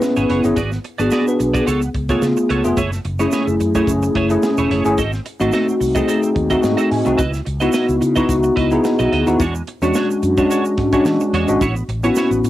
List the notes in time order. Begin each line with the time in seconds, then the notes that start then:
Already playing: B3 C#4 E4 G#4 B4
0.02 muted clean electric guitar stroke, snare, shaker
0.16 G#1 B3 E4 G#4 C#5, closed hi-hat, shaker
0.29 F#1 B3 E4 G#4 C#5, snare, closed hi-hat
0.44 G1 B3 C#4 E4 G#4, muted clean electric guitar stroke, closed hi-hat, shaker
0.56 G#1 B3 F#4 G#4 D5, kick, closed hi-hat, shaker
0.72 muted clean electric guitar stroke, snare, shaker
0.84 muted clean electric guitar stroke, closed hi-hat
0.98 G#1 B3 D4 F#4 G#4 D5, closed hi-hat, shaker
1.11 B3 F#4 G#4 D5, snare, shaker
1.26 D4 B4, muted clean electric guitar stroke, shaker
1.39 B1, muted clean electric guitar stroke, closed hi-hat, shaker
1.53 B3 F#4 G#4 D5, kick, closed hi-hat, shaker
1.66 C#2 B3 F4 A4 C#5, closed hi-hat, shaker
1.82 muted clean electric guitar stroke, closed hi-hat, shaker
1.94 C#2, muted clean electric guitar stroke, kick, closed hi-hat
2.09 A3 B3 F4 G#4 A4 C#5, kick, closed hi-hat, shaker
2.22 C#3, snare, shaker
2.37 muted clean electric guitar stroke, shaker
2.49 C#2 B3 F4 A4 C#5, closed hi-hat
2.64 F1 A3 B3 F4 G#4, muted clean electric guitar stroke, closed hi-hat, shaker
2.77 F#1 A3 E4 G#4 C#5, kick, closed hi-hat, shaker
2.92 muted clean electric guitar stroke, snare, closed hi-hat, shaker
3.05 F#1, muted clean electric guitar stroke, closed hi-hat
3.19 A3 C#4 E4 G#4 C#5, closed hi-hat, shaker
3.32 A3 E4 G#4 C#5, snare, shaker
3.47 F#1, muted clean electric guitar stroke, closed hi-hat, shaker
3.60 F#2, muted clean electric guitar stroke, closed hi-hat, shaker
3.75 A3 C#4 E4 G#4 C#5, kick, closed hi-hat, shaker
3.87 F#1, kick, closed hi-hat, shaker
4.02 muted clean electric guitar stroke, closed hi-hat, shaker
4.15 F#1 A3 E4 G#4 C#5, kick, closed hi-hat
4.30 A3 C#4 E4 G#4, muted clean electric guitar stroke, closed hi-hat, shaker
4.43 muted clean electric guitar stroke, snare, shaker
4.57 E1 A3 E4 G#4 C#5, closed hi-hat, shaker
4.70 F#1 A3 E4 G#4 C#5, snare, closed hi-hat
4.85 G1 A3 C#4 E4 G#4, muted clean electric guitar stroke, closed hi-hat, shaker
4.98 G#1 C4 F#4 A4 D#5, kick, closed hi-hat, shaker
5.13 muted clean electric guitar stroke, snare, shaker
5.26 muted clean electric guitar stroke, closed hi-hat
5.40 G#1 A3 C4 D#4 F#4 A4 D#5, closed hi-hat, shaker
5.52 C4 F#4 A4 D#5, snare, shaker
5.68 muted clean electric guitar stroke, shaker
5.80 C2, muted clean electric guitar stroke, open hi-hat, shaker
5.95 A3 C4 D#4 F#4 G#4 A4 D#5, kick, shaker
6.08 C4 F#4 A4 D#5, closed hi-hat, shaker
6.22 muted clean electric guitar stroke, closed hi-hat, shaker
6.35 D#2, muted clean electric guitar stroke, kick, closed hi-hat
6.50 A3 C4 D#4 F#4 A4 D#5, kick, closed hi-hat, shaker
6.62 G#2 D#5, muted clean electric guitar stroke, snare, shaker
6.77 C4 F#4 A4 D#5, closed hi-hat, shaker
6.90 A2 G#5, muted clean electric guitar stroke, snare, open hi-hat
7.05 C2 A3 C4 D#4 F#4, muted clean electric guitar stroke, closed hi-hat, shaker
7.18 C#2 E4 F#4 B4 D#5, kick, closed hi-hat, shaker
7.33 muted clean electric guitar stroke, snare, closed hi-hat, shaker
7.45 C#2, muted clean electric guitar stroke, closed hi-hat
7.60 B3 D#4 E4 F#4 B4 D#5, closed hi-hat, shaker
7.72 E4 F#4 B4 D#5, snare, shaker
7.88 C#2, muted clean electric guitar stroke, closed hi-hat, shaker
8.01 C#3, muted clean electric guitar stroke, closed hi-hat, shaker
8.16 B3 D#4 E4 F#4 B4 D#5, kick, closed hi-hat, shaker
8.29 C#2, kick, closed hi-hat, shaker
8.43 muted clean electric guitar stroke, shaker
8.56 C#2 E4 F#4 B4 D#5, kick, snare, closed hi-hat
8.71 B3 D#4 E4 G#4, muted clean electric guitar stroke, closed hi-hat, shaker
8.84 muted clean electric guitar stroke, snare, shaker
8.99 B1 E4 F#4 B4 D#5, closed hi-hat, shaker
9.12 D2 E4 F#4 B4 D#5, snare, closed hi-hat
9.27 D#2 B3 D#4 E4 F#4, muted clean electric guitar stroke, closed hi-hat, shaker
9.40 E2 G#3 D4 F#4 C#5, kick, closed hi-hat, shaker
9.55 muted clean electric guitar stroke, shaker
9.67 muted clean electric guitar stroke, closed hi-hat
9.82 E2 G#3 C#4 D4 F#4 C#5, closed hi-hat, shaker
9.94 G#3 D4 F#4 C#5, snare, shaker
10.10 muted clean electric guitar stroke, shaker
10.22 F#2, muted clean electric guitar stroke, closed hi-hat, shaker
10.37 G#3 C#4 D4 F#4 C#5, kick, closed hi-hat, shaker
10.50 G#3 D4 F#4 C#5, closed hi-hat, shaker
10.65 muted clean electric guitar stroke, shaker
10.78 G#2, muted clean electric guitar stroke, kick, snare, closed hi-hat
10.92 G#3 C#4 D4 F#4 C#5, kick, closed hi-hat, shaker
11.05 E3, snare, shaker
11.20 muted clean electric guitar stroke, shaker
11.33 E2 G#3 D4 F#4 C#5, snare, closed hi-hat
11.48 G#1 G#3 C#4 D4 F#4, muted clean electric guitar stroke, closed hi-hat, shaker
11.61 A1 B3 E4 F#4 C#5, kick, closed hi-hat, shaker
11.76 muted clean electric guitar stroke, shaker
11.88 A1, muted clean electric guitar stroke, closed hi-hat
12.03 B3 C#4 E4 F#4 C#5, closed hi-hat, shaker
12.15 B3 E4 F#4 C#5, snare, shaker
12.31 A1, muted clean electric guitar stroke, closed hi-hat, shaker
12.43 A2, muted clean electric guitar stroke, closed hi-hat, shaker